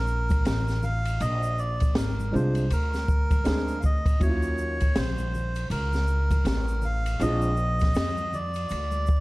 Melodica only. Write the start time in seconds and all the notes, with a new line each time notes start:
Already playing: A#4
0.46 A#4
0.84 F5
1.21 D#5
1.59 D5
1.97 A#4
2.35 C5
2.72 A#4
3.80 F5
3.85 D#5
4.23 C#5
4.97 C5
5.71 A#4
6.47 A#4
6.85 F5
7.22 D#5
8.34 D5